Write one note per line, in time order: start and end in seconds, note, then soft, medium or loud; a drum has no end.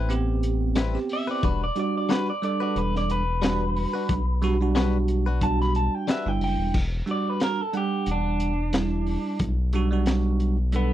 0.00 0.97 A1 medium
0.00 0.14 C4 soft
0.00 0.14 E4 medium
0.00 0.13 B4 medium
0.09 0.74 B3 medium
0.09 0.75 C4 medium
0.09 0.75 G4 loud
0.09 closed hi-hat medium
0.43 closed hi-hat medium
0.76 0.97 G3 medium
0.76 0.98 C4 medium
0.76 0.98 E4 medium
0.76 0.98 B4 medium
0.76 snare loud
0.76 closed hi-hat medium
0.94 1.43 B3 medium
0.94 1.43 C4 medium
0.94 1.43 G4 medium
0.94 snare soft
1.09 1.29 E5 loud
1.09 open hi-hat medium
1.27 1.43 C4 soft
1.27 1.43 E4 soft
1.27 1.43 B4 medium
1.27 1.45 D5 medium
1.43 1.71 E1 medium
1.43 1.64 G3 medium
1.43 1.64 D4 medium
1.43 1.65 F#4 medium
1.43 1.65 B4 medium
1.43 1.62 B4 medium
1.43 kick loud
1.43 closed hi-hat medium
1.64 1.77 D5 medium
1.75 2.29 G3 medium
1.75 2.29 D4 medium
1.75 2.30 F#4 medium
1.75 closed hi-hat medium
1.79 1.96 D5 medium
1.98 2.11 D5 medium
2.09 2.30 G3 medium
2.09 2.31 D4 medium
2.09 2.31 F#4 medium
2.09 2.31 B4 medium
2.09 2.29 B4 loud
2.09 snare loud
2.09 closed hi-hat medium
2.30 2.44 D5 medium
2.42 3.21 G3 medium
2.42 3.21 D4 medium
2.42 3.22 A4 medium
2.42 2.61 D5 medium
2.42 closed hi-hat medium
2.60 2.81 D4 soft
2.60 2.80 F#4 soft
2.60 2.79 B4 medium
2.60 2.78 D5 medium
2.76 3.86 E1 medium
2.76 2.95 B4 medium
2.76 closed hi-hat medium
2.96 3.11 D5 medium
2.96 snare soft
3.10 5.06 B4 medium
3.10 closed hi-hat medium
3.42 3.63 G3 medium
3.42 4.20 G3 medium
3.42 3.64 D4 medium
3.42 4.21 D4 medium
3.42 3.64 F#4 medium
3.42 4.21 F#4 medium
3.42 3.64 B4 medium
3.42 snare loud
3.42 closed hi-hat medium
3.76 open hi-hat medium
3.94 4.14 D4 soft
3.94 4.13 F#4 soft
3.94 4.12 B4 medium
4.09 5.89 B1 medium
4.09 kick loud
4.09 closed hi-hat medium
4.42 4.56 G3 medium
4.42 4.57 D4 medium
4.42 4.57 F#4 loud
4.42 snare soft
4.42 closed hi-hat medium
4.61 5.25 G3 medium
4.61 5.25 D4 medium
4.61 5.25 F#4 medium
4.75 4.96 G3 medium
4.75 4.97 D4 medium
4.75 4.97 F#4 medium
4.75 4.97 B4 medium
4.75 snare loud
4.75 closed hi-hat medium
5.08 closed hi-hat medium
5.26 5.46 D4 soft
5.26 5.46 F#4 soft
5.26 5.45 B4 soft
5.41 6.06 G3 medium
5.41 6.07 D4 medium
5.41 6.07 F#4 medium
5.41 5.60 A5 medium
5.41 kick medium
5.41 closed hi-hat medium
5.61 5.76 B5 medium
5.61 snare soft
5.75 5.95 A5 medium
5.75 closed hi-hat medium
5.95 6.09 G5 medium
6.08 6.29 G3 medium
6.08 6.29 D4 medium
6.08 6.30 F#4 medium
6.08 6.30 B4 medium
6.08 6.28 E5 medium
6.08 snare loud
6.08 closed hi-hat medium
6.26 6.40 G1 medium
6.26 6.75 G3 medium
6.26 6.75 D4 medium
6.26 6.75 E4 medium
6.26 6.42 G5 medium
6.40 6.57 F#1 medium
6.40 6.75 G5 medium
6.40 open hi-hat medium
6.58 6.73 E1 medium
6.74 7.02 E1 loud
6.74 kick loud
6.74 crash medium
7.06 7.60 G3 medium
7.06 7.60 D4 medium
7.06 7.61 F#4 medium
7.06 closed hi-hat medium
7.11 7.30 D5 medium
7.30 7.43 B4 medium
7.40 7.61 A#4 medium
7.40 snare loud
7.40 closed hi-hat medium
7.61 7.75 A4 medium
7.73 8.52 G3 medium
7.73 8.52 D4 medium
7.73 8.53 F#5 medium
7.73 closed hi-hat medium
7.77 8.08 G4 medium
8.06 9.17 E1 medium
8.06 closed hi-hat medium
8.11 9.38 D4 medium
8.40 closed hi-hat medium
8.73 9.51 G3 medium
8.73 9.52 D4 medium
8.73 9.52 E4 medium
8.73 snare loud
8.73 closed hi-hat medium
9.07 open hi-hat medium
9.39 10.93 B1 loud
9.39 kick loud
9.39 closed hi-hat medium
9.73 9.88 G3 loud
9.73 9.88 D4 medium
9.73 9.88 F#4 loud
9.73 closed hi-hat medium
9.91 10.55 G3 medium
9.91 10.56 D4 medium
9.91 10.56 F#4 medium
10.06 snare loud
10.06 closed hi-hat medium
10.40 closed hi-hat medium
10.72 10.93 G3 medium
10.72 10.93 B3 medium
10.72 10.93 D4 medium
10.72 10.93 A4 medium
10.72 closed hi-hat medium